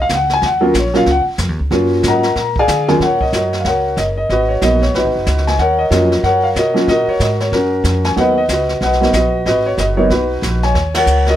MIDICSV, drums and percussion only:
0, 0, Header, 1, 2, 480
1, 0, Start_track
1, 0, Key_signature, -6, "minor"
1, 0, Tempo, 322581
1, 632, Time_signature, 4, 2, 24, 8
1, 16908, End_track
2, 0, Start_track
2, 0, Title_t, "Drums"
2, 136, Note_on_c, 9, 44, 56
2, 138, Note_on_c, 9, 38, 63
2, 143, Note_on_c, 9, 36, 18
2, 285, Note_off_c, 9, 44, 0
2, 287, Note_off_c, 9, 38, 0
2, 292, Note_off_c, 9, 36, 0
2, 437, Note_on_c, 9, 38, 39
2, 585, Note_off_c, 9, 38, 0
2, 622, Note_on_c, 9, 25, 50
2, 622, Note_on_c, 9, 36, 21
2, 622, Note_on_c, 9, 38, 46
2, 771, Note_off_c, 9, 36, 0
2, 771, Note_off_c, 9, 38, 0
2, 1103, Note_on_c, 9, 44, 53
2, 1105, Note_on_c, 9, 38, 59
2, 1106, Note_on_c, 9, 36, 18
2, 1252, Note_off_c, 9, 44, 0
2, 1253, Note_off_c, 9, 38, 0
2, 1255, Note_off_c, 9, 36, 0
2, 1404, Note_on_c, 9, 38, 40
2, 1553, Note_off_c, 9, 38, 0
2, 1577, Note_off_c, 9, 25, 0
2, 1577, Note_on_c, 9, 25, 47
2, 1577, Note_on_c, 9, 38, 43
2, 1582, Note_on_c, 9, 36, 20
2, 1725, Note_off_c, 9, 38, 0
2, 1731, Note_off_c, 9, 36, 0
2, 2055, Note_on_c, 9, 44, 59
2, 2056, Note_on_c, 9, 38, 61
2, 2063, Note_on_c, 9, 36, 20
2, 2204, Note_off_c, 9, 44, 0
2, 2205, Note_off_c, 9, 38, 0
2, 2212, Note_off_c, 9, 36, 0
2, 2546, Note_on_c, 9, 36, 24
2, 2548, Note_off_c, 9, 25, 0
2, 2548, Note_on_c, 9, 25, 49
2, 2548, Note_on_c, 9, 38, 48
2, 2695, Note_off_c, 9, 36, 0
2, 2697, Note_off_c, 9, 38, 0
2, 3023, Note_on_c, 9, 44, 50
2, 3025, Note_on_c, 9, 38, 62
2, 3027, Note_on_c, 9, 36, 19
2, 3172, Note_off_c, 9, 44, 0
2, 3174, Note_off_c, 9, 38, 0
2, 3176, Note_off_c, 9, 36, 0
2, 3317, Note_on_c, 9, 38, 36
2, 3466, Note_off_c, 9, 38, 0
2, 3508, Note_off_c, 9, 25, 0
2, 3508, Note_on_c, 9, 25, 41
2, 3508, Note_on_c, 9, 36, 23
2, 3508, Note_on_c, 9, 38, 40
2, 3657, Note_off_c, 9, 36, 0
2, 3657, Note_off_c, 9, 38, 0
2, 3807, Note_on_c, 9, 36, 49
2, 3955, Note_off_c, 9, 36, 0
2, 3986, Note_on_c, 9, 44, 62
2, 3988, Note_on_c, 9, 38, 65
2, 3990, Note_on_c, 9, 36, 21
2, 4135, Note_off_c, 9, 44, 0
2, 4137, Note_off_c, 9, 38, 0
2, 4138, Note_off_c, 9, 36, 0
2, 4290, Note_on_c, 9, 38, 38
2, 4439, Note_off_c, 9, 38, 0
2, 4470, Note_on_c, 9, 36, 18
2, 4473, Note_off_c, 9, 25, 0
2, 4473, Note_on_c, 9, 25, 44
2, 4473, Note_on_c, 9, 38, 38
2, 4619, Note_off_c, 9, 36, 0
2, 4622, Note_off_c, 9, 38, 0
2, 4771, Note_on_c, 9, 36, 47
2, 4920, Note_off_c, 9, 36, 0
2, 4951, Note_on_c, 9, 36, 17
2, 4952, Note_on_c, 9, 44, 50
2, 4953, Note_on_c, 9, 38, 54
2, 5100, Note_off_c, 9, 36, 0
2, 5101, Note_off_c, 9, 44, 0
2, 5102, Note_off_c, 9, 38, 0
2, 5249, Note_on_c, 9, 38, 36
2, 5398, Note_off_c, 9, 38, 0
2, 5422, Note_off_c, 9, 25, 0
2, 5422, Note_on_c, 9, 25, 36
2, 5422, Note_on_c, 9, 38, 37
2, 5428, Note_on_c, 9, 36, 22
2, 5571, Note_off_c, 9, 38, 0
2, 5577, Note_off_c, 9, 36, 0
2, 5909, Note_on_c, 9, 44, 45
2, 5910, Note_on_c, 9, 36, 18
2, 5910, Note_on_c, 9, 38, 51
2, 6057, Note_off_c, 9, 44, 0
2, 6059, Note_off_c, 9, 36, 0
2, 6059, Note_off_c, 9, 38, 0
2, 6394, Note_on_c, 9, 36, 21
2, 6398, Note_off_c, 9, 25, 0
2, 6398, Note_on_c, 9, 25, 51
2, 6398, Note_on_c, 9, 38, 41
2, 6543, Note_off_c, 9, 36, 0
2, 6547, Note_off_c, 9, 38, 0
2, 6870, Note_on_c, 9, 44, 50
2, 6872, Note_on_c, 9, 38, 54
2, 6874, Note_on_c, 9, 36, 21
2, 7019, Note_off_c, 9, 44, 0
2, 7020, Note_off_c, 9, 38, 0
2, 7022, Note_off_c, 9, 36, 0
2, 7178, Note_on_c, 9, 38, 35
2, 7327, Note_off_c, 9, 38, 0
2, 7355, Note_on_c, 9, 36, 15
2, 7359, Note_off_c, 9, 25, 0
2, 7359, Note_on_c, 9, 25, 45
2, 7359, Note_on_c, 9, 38, 35
2, 7504, Note_off_c, 9, 36, 0
2, 7507, Note_off_c, 9, 38, 0
2, 7833, Note_on_c, 9, 44, 47
2, 7834, Note_on_c, 9, 38, 55
2, 7836, Note_on_c, 9, 36, 23
2, 7981, Note_off_c, 9, 44, 0
2, 7983, Note_off_c, 9, 38, 0
2, 7984, Note_off_c, 9, 36, 0
2, 7997, Note_on_c, 9, 38, 24
2, 8142, Note_off_c, 9, 38, 0
2, 8142, Note_on_c, 9, 38, 36
2, 8155, Note_off_c, 9, 38, 0
2, 8155, Note_on_c, 9, 38, 40
2, 8304, Note_off_c, 9, 38, 0
2, 8314, Note_off_c, 9, 25, 0
2, 8314, Note_on_c, 9, 25, 42
2, 8314, Note_on_c, 9, 38, 42
2, 8315, Note_on_c, 9, 36, 22
2, 8463, Note_off_c, 9, 38, 0
2, 8464, Note_off_c, 9, 36, 0
2, 8796, Note_on_c, 9, 36, 21
2, 8799, Note_on_c, 9, 44, 49
2, 8800, Note_on_c, 9, 38, 54
2, 8945, Note_off_c, 9, 36, 0
2, 8947, Note_off_c, 9, 44, 0
2, 8949, Note_off_c, 9, 38, 0
2, 9101, Note_on_c, 9, 38, 37
2, 9250, Note_off_c, 9, 38, 0
2, 9277, Note_on_c, 9, 36, 21
2, 9284, Note_off_c, 9, 25, 0
2, 9284, Note_on_c, 9, 25, 38
2, 9284, Note_on_c, 9, 38, 35
2, 9426, Note_off_c, 9, 36, 0
2, 9433, Note_off_c, 9, 38, 0
2, 9756, Note_on_c, 9, 36, 21
2, 9759, Note_on_c, 9, 44, 51
2, 9761, Note_on_c, 9, 38, 53
2, 9905, Note_off_c, 9, 36, 0
2, 9908, Note_off_c, 9, 44, 0
2, 9909, Note_off_c, 9, 38, 0
2, 10062, Note_on_c, 9, 38, 36
2, 10211, Note_off_c, 9, 38, 0
2, 10233, Note_on_c, 9, 36, 22
2, 10238, Note_off_c, 9, 25, 0
2, 10238, Note_on_c, 9, 25, 48
2, 10238, Note_on_c, 9, 38, 40
2, 10382, Note_off_c, 9, 36, 0
2, 10387, Note_off_c, 9, 38, 0
2, 10712, Note_on_c, 9, 36, 20
2, 10715, Note_on_c, 9, 44, 52
2, 10717, Note_on_c, 9, 38, 53
2, 10861, Note_off_c, 9, 36, 0
2, 10864, Note_off_c, 9, 44, 0
2, 10865, Note_off_c, 9, 38, 0
2, 11014, Note_on_c, 9, 38, 36
2, 11162, Note_off_c, 9, 38, 0
2, 11192, Note_on_c, 9, 36, 15
2, 11198, Note_off_c, 9, 25, 0
2, 11198, Note_on_c, 9, 25, 39
2, 11198, Note_on_c, 9, 38, 37
2, 11341, Note_off_c, 9, 36, 0
2, 11347, Note_off_c, 9, 38, 0
2, 11670, Note_on_c, 9, 44, 60
2, 11671, Note_on_c, 9, 36, 22
2, 11671, Note_on_c, 9, 38, 54
2, 11819, Note_off_c, 9, 36, 0
2, 11819, Note_off_c, 9, 44, 0
2, 11820, Note_off_c, 9, 38, 0
2, 11969, Note_on_c, 9, 38, 54
2, 12118, Note_off_c, 9, 38, 0
2, 12152, Note_on_c, 9, 36, 20
2, 12156, Note_off_c, 9, 25, 0
2, 12156, Note_on_c, 9, 25, 45
2, 12156, Note_on_c, 9, 38, 42
2, 12301, Note_off_c, 9, 36, 0
2, 12305, Note_off_c, 9, 38, 0
2, 12628, Note_on_c, 9, 44, 52
2, 12629, Note_on_c, 9, 38, 55
2, 12631, Note_on_c, 9, 36, 19
2, 12777, Note_off_c, 9, 44, 0
2, 12778, Note_off_c, 9, 38, 0
2, 12780, Note_off_c, 9, 36, 0
2, 12929, Note_on_c, 9, 38, 34
2, 13078, Note_off_c, 9, 38, 0
2, 13112, Note_on_c, 9, 36, 21
2, 13114, Note_off_c, 9, 25, 0
2, 13114, Note_on_c, 9, 25, 42
2, 13114, Note_on_c, 9, 38, 37
2, 13261, Note_off_c, 9, 36, 0
2, 13263, Note_off_c, 9, 38, 0
2, 13278, Note_on_c, 9, 38, 26
2, 13427, Note_off_c, 9, 38, 0
2, 13434, Note_on_c, 9, 38, 36
2, 13583, Note_off_c, 9, 38, 0
2, 13588, Note_on_c, 9, 44, 46
2, 13590, Note_on_c, 9, 38, 59
2, 13592, Note_on_c, 9, 36, 16
2, 13737, Note_off_c, 9, 44, 0
2, 13738, Note_off_c, 9, 38, 0
2, 13741, Note_off_c, 9, 36, 0
2, 14073, Note_on_c, 9, 36, 17
2, 14077, Note_off_c, 9, 25, 0
2, 14077, Note_on_c, 9, 25, 45
2, 14077, Note_on_c, 9, 38, 43
2, 14222, Note_off_c, 9, 36, 0
2, 14226, Note_off_c, 9, 38, 0
2, 14551, Note_on_c, 9, 44, 58
2, 14552, Note_on_c, 9, 36, 25
2, 14553, Note_on_c, 9, 38, 56
2, 14700, Note_off_c, 9, 44, 0
2, 14701, Note_off_c, 9, 36, 0
2, 14701, Note_off_c, 9, 38, 0
2, 15032, Note_off_c, 9, 25, 0
2, 15032, Note_on_c, 9, 25, 37
2, 15032, Note_on_c, 9, 36, 16
2, 15032, Note_on_c, 9, 38, 38
2, 15181, Note_off_c, 9, 36, 0
2, 15181, Note_off_c, 9, 38, 0
2, 15512, Note_on_c, 9, 36, 25
2, 15518, Note_on_c, 9, 44, 64
2, 15520, Note_on_c, 9, 38, 54
2, 15661, Note_off_c, 9, 36, 0
2, 15667, Note_off_c, 9, 44, 0
2, 15668, Note_off_c, 9, 38, 0
2, 15814, Note_on_c, 9, 38, 37
2, 15962, Note_off_c, 9, 38, 0
2, 15990, Note_on_c, 9, 36, 23
2, 15994, Note_off_c, 9, 25, 0
2, 15994, Note_on_c, 9, 25, 38
2, 15994, Note_on_c, 9, 38, 43
2, 16138, Note_off_c, 9, 36, 0
2, 16143, Note_off_c, 9, 38, 0
2, 16285, Note_on_c, 9, 51, 64
2, 16287, Note_on_c, 9, 38, 71
2, 16434, Note_off_c, 9, 51, 0
2, 16435, Note_off_c, 9, 38, 0
2, 16468, Note_on_c, 9, 44, 49
2, 16617, Note_off_c, 9, 44, 0
2, 16759, Note_on_c, 9, 38, 36
2, 16908, Note_off_c, 9, 25, 0
2, 16908, Note_off_c, 9, 38, 0
2, 16908, End_track
0, 0, End_of_file